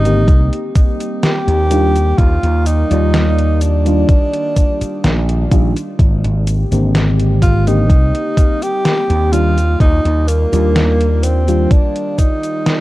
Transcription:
0.00 0.28 G#1 medium
0.00 0.26 C3 medium
0.00 0.26 G#3 medium
0.00 12.80 A#3 medium
0.00 1.68 C4 medium
0.00 0.71 D#4 loud
0.00 0.26 G4 medium
0.04 0.25 D3 medium
0.04 0.25 A#3 medium
0.04 0.26 C4 medium
0.04 0.26 G4 medium
0.04 closed hi-hat soft
0.04 cabasa soft
0.28 0.49 C2 medium
0.28 1.70 D#3 medium
0.28 1.69 G3 medium
0.28 1.69 G4 medium
0.28 kick loud
0.28 closed hi-hat medium
0.28 cabasa soft
0.53 closed hi-hat soft
0.76 kick loud
0.76 closed hi-hat medium
0.76 cabasa medium
1.00 closed hi-hat soft
1.00 cabasa soft
1.23 2.20 G4 loud
1.23 snare loud
1.23 closed hi-hat medium
1.23 cabasa soft
1.47 2.12 D#2 medium
1.47 closed hi-hat soft
1.70 1.94 D#3 medium
1.70 5.95 D#3 medium
1.70 1.95 G3 medium
1.70 5.95 G3 medium
1.70 1.95 D4 medium
1.70 5.95 F4 medium
1.70 1.95 F4 medium
1.70 5.95 D5 medium
1.70 closed hi-hat medium
1.70 cabasa medium
1.96 closed hi-hat soft
1.96 cabasa soft
2.18 2.39 D#2 medium
2.18 2.68 F4 loud
2.18 kick loud
2.18 closed hi-hat medium
2.18 cabasa soft
2.43 2.82 D#2 medium
2.43 closed hi-hat soft
2.66 3.63 D#4 loud
2.66 closed hi-hat medium
2.66 cabasa medium
2.90 4.03 D#2 medium
2.90 3.80 D#3 medium
2.90 3.80 G3 medium
2.90 3.81 F4 medium
2.90 3.80 D5 medium
2.90 closed hi-hat soft
2.90 cabasa soft
3.14 snare loud
3.14 closed hi-hat medium
3.14 cabasa soft
3.38 closed hi-hat soft
3.61 5.52 D4 loud
3.61 closed hi-hat medium
3.61 cabasa medium
3.85 4.08 D#3 medium
3.85 4.08 G3 medium
3.85 4.08 D4 medium
3.85 4.09 F4 medium
3.85 closed hi-hat soft
3.85 cabasa soft
4.09 kick loud
4.09 closed hi-hat medium
4.09 cabasa soft
4.33 closed hi-hat soft
4.56 kick medium
4.56 closed hi-hat medium
4.56 cabasa medium
4.81 muted slap bass stroke soft
4.81 closed hi-hat soft
4.81 cabasa soft
5.04 5.44 A#1 medium
5.04 snare loud
5.04 closed hi-hat medium
5.04 cabasa soft
5.29 closed hi-hat soft
5.51 5.72 A#1 medium
5.51 5.75 D#3 medium
5.51 5.76 G3 medium
5.51 5.76 D4 medium
5.51 5.76 F4 medium
5.51 kick loud
5.51 closed hi-hat medium
5.51 cabasa medium
5.77 closed hi-hat soft
5.77 cabasa soft
5.99 6.20 G#1 loud
5.99 7.88 D3 medium
5.99 7.88 G#3 medium
5.99 9.29 C4 medium
5.99 9.29 G4 medium
5.99 kick loud
5.99 closed hi-hat medium
5.99 cabasa soft
6.24 6.63 G#1 medium
6.24 closed hi-hat soft
6.47 closed hi-hat medium
6.47 cabasa medium
6.71 7.90 G#1 medium
6.71 7.61 D3 medium
6.71 7.61 A#3 medium
6.71 7.61 C4 medium
6.71 7.62 G4 medium
6.71 closed hi-hat soft
6.71 cabasa soft
6.95 snare loud
6.95 closed hi-hat medium
6.95 cabasa soft
7.20 closed hi-hat soft
7.42 7.68 F4 loud
7.42 kick medium
7.42 closed hi-hat medium
7.42 cabasa medium
7.67 7.87 D3 medium
7.67 7.87 A#3 medium
7.67 7.88 C4 medium
7.67 8.64 D#4 loud
7.67 7.88 G4 medium
7.67 closed hi-hat soft
7.67 cabasa soft
7.90 8.10 C2 medium
7.90 9.31 D#3 medium
7.90 9.31 G3 medium
7.90 kick loud
7.90 closed hi-hat medium
7.90 cabasa soft
8.15 closed hi-hat soft
8.37 kick loud
8.37 closed hi-hat medium
8.37 cabasa medium
8.62 9.34 G4 loud
8.62 closed hi-hat soft
8.62 cabasa soft
8.85 snare loud
8.85 closed hi-hat medium
8.85 cabasa soft
9.10 9.74 D#2 medium
9.10 closed hi-hat soft
9.32 9.56 D#3 medium
9.32 12.80 D#3 medium
9.32 12.80 G3 medium
9.32 9.57 G3 medium
9.32 9.57 D4 medium
9.32 9.80 F4 loud
9.32 12.80 F4 medium
9.32 9.57 F4 medium
9.32 12.80 D5 medium
9.32 closed hi-hat medium
9.32 cabasa medium
9.58 closed hi-hat soft
9.58 cabasa soft
9.80 10.01 D#2 loud
9.80 10.29 D#4 loud
9.80 kick loud
9.80 closed hi-hat medium
9.80 cabasa soft
10.05 10.44 D#2 medium
10.05 closed hi-hat soft
10.28 11.25 A#3 loud
10.28 closed hi-hat loud
10.28 cabasa medium
10.52 11.65 D#2 medium
10.52 11.42 D#3 medium
10.52 11.42 G3 medium
10.52 11.42 D4 medium
10.52 11.43 F4 medium
10.52 closed hi-hat soft
10.52 cabasa soft
10.76 snare loud
10.76 closed hi-hat medium
10.76 cabasa soft
11.01 closed hi-hat soft
11.23 11.73 C4 loud
11.23 closed hi-hat medium
11.23 cabasa medium
11.47 11.70 D#3 medium
11.47 11.70 G3 medium
11.47 11.70 D4 medium
11.47 11.70 F4 medium
11.47 closed hi-hat soft
11.47 cabasa soft
11.71 12.20 D4 loud
11.71 kick loud
11.71 closed hi-hat medium
11.71 cabasa soft
11.96 closed hi-hat soft
12.18 12.80 D#4 loud
12.18 kick medium
12.18 closed hi-hat medium
12.18 cabasa medium
12.43 closed hi-hat soft
12.43 cabasa soft
12.66 snare loud
12.66 closed hi-hat medium
12.66 cabasa soft

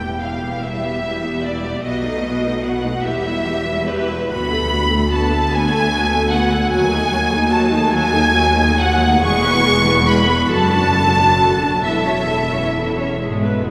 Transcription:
0.00 1.79 E1 medium
0.00 1.80 E2 medium
0.00 0.22 B3 soft
0.00 0.22 G4 soft
0.00 0.21 G5 medium
0.00 0.22 G5 medium
0.20 0.41 G3 soft
0.20 0.41 E4 soft
0.20 0.61 F5 soft
0.20 0.62 F5 medium
0.42 0.63 B3 soft
0.42 0.62 G4 soft
0.62 0.83 G3 medium
0.62 0.83 E4 soft
0.62 1.44 E5 medium
0.84 1.04 B3 soft
0.84 1.04 G4 soft
1.04 1.23 G3 soft
1.04 1.23 E4 soft
1.25 1.44 B3 soft
1.25 1.45 G4 soft
1.44 1.64 G3 soft
1.44 1.64 E4 soft
1.44 1.84 D5 medium
1.64 1.83 B3 soft
1.64 1.84 G4 soft
1.83 3.01 B1 medium
1.83 3.02 B2 medium
1.83 2.03 B3 soft
1.83 2.03 F#4 medium
1.83 2.62 D#5 medium
2.03 2.24 A3 medium
2.03 2.24 D#4 medium
2.24 2.44 B3 medium
2.24 2.44 F#4 medium
2.44 2.64 A3 medium
2.44 2.64 D#4 medium
2.63 2.83 B3 medium
2.63 2.83 F#4 soft
2.63 3.04 F#5 medium
2.84 3.04 A3 soft
2.84 3.04 D#4 medium
3.03 4.31 E1 medium
3.03 4.32 E2 medium
3.03 3.23 E3 medium
3.03 3.23 G4 medium
3.03 3.88 E5 medium
3.25 3.46 G3 medium
3.25 3.46 E4 medium
3.46 3.67 E3 soft
3.46 3.68 G4 medium
3.66 3.89 G3 medium
3.66 3.89 E4 medium
3.88 4.09 E3 medium
3.88 4.09 G4 medium
3.88 4.31 B4 medium
4.09 4.31 G3 medium
4.09 4.31 E4 medium
4.30 6.71 D2 medium
4.30 6.72 D2 medium
4.30 4.50 B3 medium
4.30 4.50 F#4 medium
4.30 5.11 B5 medium
4.30 5.12 B5 loud
4.51 4.72 A3 medium
4.51 4.72 A4 medium
4.71 4.92 B3 medium
4.71 4.92 F#4 medium
4.91 5.12 A3 medium
4.91 5.12 A4 medium
5.11 5.31 B3 medium
5.11 5.30 F#4 medium
5.11 5.51 A5 loud
5.11 5.53 A5 medium
5.31 5.52 A3 medium
5.31 5.52 A4 medium
5.51 5.72 B3 medium
5.51 5.72 F#4 medium
5.51 6.32 G#5 medium
5.51 6.32 G#5 loud
5.73 5.93 A3 medium
5.73 5.93 A4 medium
5.92 6.11 B3 medium
5.92 6.11 F#4 medium
6.12 6.33 A3 medium
6.12 6.32 A4 medium
6.32 6.52 B3 medium
6.32 6.52 F#4 medium
6.32 6.72 F#5 loud
6.32 6.72 F#5 medium
6.51 6.72 A3 medium
6.51 6.72 A4 medium
6.71 9.20 D#2 medium
6.71 6.90 F#3 medium
6.71 6.90 F#4 medium
6.71 7.50 G#5 loud
6.92 7.12 A3 medium
6.92 7.12 D#4 medium
7.12 7.32 F#3 medium
7.12 7.32 F#4 medium
7.31 7.52 A3 medium
7.31 7.52 D#4 medium
7.50 7.70 F#3 medium
7.50 7.70 F#4 medium
7.50 7.92 A5 medium
7.50 7.93 A5 loud
7.71 7.92 A3 medium
7.71 7.92 D#4 medium
7.91 8.13 F#3 medium
7.91 8.13 F#4 medium
7.91 8.79 G#5 loud
7.91 8.78 G#5 loud
8.12 8.34 A3 medium
8.12 8.35 D#4 medium
8.35 8.56 F#3 medium
8.35 8.56 F#4 medium
8.56 8.79 A3 medium
8.56 8.80 D#4 medium
8.78 9.02 F#3 medium
8.78 9.02 F#4 medium
8.78 9.23 F#5 loud
8.78 9.24 F#5 loud
9.02 9.24 A3 medium
9.02 9.24 D#4 medium
9.22 10.51 E1 medium
9.22 10.52 E2 loud
9.22 9.43 G#3 medium
9.22 9.43 G#4 medium
9.22 10.06 C#6 loud
9.22 10.07 C#6 loud
9.44 9.66 B3 medium
9.44 9.66 B4 medium
9.65 9.87 G#3 medium
9.65 9.87 G#4 medium
9.87 10.08 B3 medium
9.87 10.08 B4 medium
10.08 10.28 G#3 medium
10.08 10.28 G#4 medium
10.08 10.51 B5 medium
10.08 10.52 B5 loud
10.28 10.51 B3 medium
10.28 10.51 B4 medium
10.48 11.80 F#1 medium
10.48 11.81 F#2 medium
10.48 10.71 F#4 medium
10.48 10.71 A4 medium
10.48 11.82 A5 loud
10.48 11.81 A5 loud
10.72 10.94 D4 medium
10.72 10.94 F#4 medium
10.94 11.15 F#4 medium
10.94 11.16 A4 medium
11.17 11.39 D4 medium
11.17 11.37 F#4 medium
11.38 11.59 F#4 medium
11.38 11.59 A4 medium
11.60 11.83 D4 medium
11.60 11.83 F#4 medium
11.82 13.71 E1 medium
11.82 13.09 E2 medium
11.82 12.04 E4 medium
11.82 12.04 A4 medium
11.82 13.20 E5 medium
11.82 13.18 E5 loud
12.06 12.29 C#4 medium
12.06 12.29 C#5 medium
12.29 12.52 E4 medium
12.29 12.52 A4 medium
12.52 12.75 C#4 medium
12.52 12.75 C#5 medium
12.76 12.97 E4 medium
12.76 12.96 A4 medium
12.97 13.21 C#4 medium
12.97 13.20 C#5 medium
13.21 13.63 G#2 medium
13.21 13.42 G#3 medium
13.21 13.42 G#4 medium
13.43 13.66 B3 medium
13.43 13.66 B4 medium
13.65 13.71 E2 medium
13.65 13.71 G#3 medium
13.65 13.71 G#4 medium

